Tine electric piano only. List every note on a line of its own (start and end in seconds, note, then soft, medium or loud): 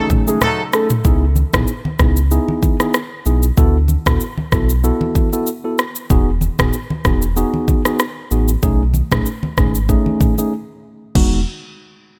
0.00 0.23 A3 loud
0.00 0.23 C#4 medium
0.00 0.23 D#4 medium
0.00 0.23 G#4 loud
0.27 0.43 A3 medium
0.27 0.43 C#4 medium
0.27 0.43 D#4 medium
0.27 0.44 G#4 medium
0.73 0.92 A3 medium
0.73 0.92 C#4 medium
0.73 0.92 D#4 medium
0.73 0.92 G#4 medium
1.05 1.23 B3 medium
1.05 1.24 D#4 medium
1.05 1.24 E4 medium
1.05 1.24 G#4 loud
1.54 1.70 B3 medium
1.54 1.70 D#4 medium
1.54 1.70 E4 medium
1.54 1.70 G#4 medium
1.99 2.18 B3 medium
1.99 2.18 D#4 medium
1.99 2.18 E4 medium
1.99 2.19 G#4 medium
2.31 2.76 B3 medium
2.31 2.76 D#4 medium
2.31 2.76 E4 medium
2.31 2.76 G#4 loud
2.80 2.96 B3 medium
2.80 2.96 D#4 medium
2.80 2.96 E4 medium
2.80 2.96 G#4 medium
3.26 3.45 B3 medium
3.26 3.45 D#4 medium
3.26 3.45 E4 medium
3.26 3.45 G#4 medium
3.57 3.76 B3 loud
3.57 3.76 E4 medium
3.57 3.76 F#4 medium
3.57 3.76 A4 loud
4.06 4.22 B3 medium
4.06 4.22 E4 medium
4.06 4.22 F#4 medium
4.06 4.23 A4 medium
4.52 4.71 B3 medium
4.52 4.71 E4 medium
4.52 4.71 F#4 medium
4.52 4.71 A4 medium
4.84 5.28 B3 medium
4.84 5.29 E4 medium
4.84 5.29 F#4 medium
4.84 5.29 A4 loud
5.33 5.49 B3 medium
5.33 5.49 E4 medium
5.33 5.49 F#4 medium
5.33 5.49 A4 medium
5.64 5.80 B3 medium
5.64 5.80 E4 medium
5.64 5.80 F#4 medium
5.64 5.80 A4 medium
6.10 6.29 B3 medium
6.10 6.29 D#4 medium
6.10 6.29 F#4 medium
6.10 6.29 G#4 loud
6.59 6.75 B3 medium
6.59 6.75 D#4 medium
6.59 6.75 F#4 medium
6.59 6.75 G#4 medium
7.05 7.24 B3 medium
7.05 7.24 D#4 medium
7.05 7.24 F#4 medium
7.05 7.24 G#4 medium
7.36 7.81 B3 medium
7.36 7.81 D#4 medium
7.36 7.81 F#4 medium
7.36 7.81 G#4 loud
7.85 8.01 B3 medium
7.85 8.01 D#4 medium
7.85 8.01 F#4 medium
7.85 8.02 G#4 medium
8.31 8.50 B3 medium
8.31 8.50 D#4 medium
8.31 8.50 F#4 medium
8.31 8.50 G#4 medium
8.63 8.81 A3 medium
8.63 8.82 C#4 medium
8.63 8.82 D#4 medium
8.63 8.82 G#4 loud
9.12 9.28 A3 medium
9.12 9.28 C#4 medium
9.12 9.28 D#4 medium
9.12 9.28 G#4 medium
9.57 9.76 A3 medium
9.57 9.76 C#4 medium
9.57 9.76 D#4 medium
9.57 9.77 G#4 medium
9.89 10.34 A3 loud
9.89 10.34 C#4 medium
9.89 10.34 D#4 medium
9.89 10.34 G#4 loud
10.38 10.52 A3 medium
10.38 10.52 C#4 medium
10.38 10.52 D#4 medium
10.38 10.53 G#4 medium
11.15 11.39 G#3 medium
11.15 11.39 B3 medium
11.15 11.40 D#4 medium
11.15 11.40 F#4 loud